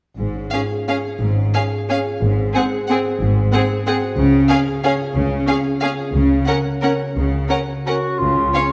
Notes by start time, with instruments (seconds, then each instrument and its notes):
0.18 double bass section G#1, cello section G#2, harp G#2
0.35 harp C#4
0.52 viola section C#4, harp F4, violin section G#4 F5
0.71 harp G#4
0.88 viola section C#4, violin section G#4 F5, harp C#5
1.05 harp F4
1.21 double bass section G#1, cello section G#2, harp G#2
1.37 harp C#4
1.54 viola section C#4, harp F4, violin section G#4 F5
1.71 harp G#4
1.88 viola section C#4, violin section G#4 F5, harp C#5
2.05 harp F4
2.21 double bass section G#1, harp G#2, cello section G#2
2.38 harp C4
2.55 viola section C4, violin section G#4 F#5
2.72 harp G#4
2.89 viola section C4, violin section G#4 F#5, harp C5
3.05 harp F#4
3.20 double bass section G#1, cello section G#2, harp G#2
3.36 harp C4
3.52 viola section C4, harp F#4, violin section G#4 F#5
3.70 harp G#4
3.85 viola section C4, violin section G#4 F#5, harp C5
4.03 harp F#4
4.17 double bass section C#2, cello section C#3, harp C#3
4.49 viola section C#4, harp F4, violin section G#4 F5
4.67 harp G#4
4.84 viola section C#4, violin section G#4 F5, harp C#5
5.00 harp F4
5.15 double bass section C#2, cello section C#3, harp C#3
5.31 harp C#4
5.47 viola section C#4, harp F4, violin section G#4 F5
5.65 harp G#4
5.82 viola section C#4, violin section G#4 F5, harp C#5
5.98 harp F4
6.14 double bass section C#2, harp C#3, cello section C#3
6.30 harp C#4
6.47 viola section C#4, harp F#4, violin section A#4 F#5
6.65 harp A#4
6.82 viola section C#4, violin section A#4 F#5, harp C#5
6.99 harp F#4
7.15 double bass section C#2, cello section C#3, harp C#3
7.32 harp C#4
7.49 viola section C#4, harp F#4, violin section A#4 F#5
7.68 harp A#4
7.85 viola section C#4, clarinet F#4, violin section A#4 F#5, harp C#5
8.03 harp F#4
8.18 double bass section C#2, cello section C#3, harp C#3, clarinet F4
8.37 harp G#3
8.54 harp C#4, viola section C#4, violin section C#5 F5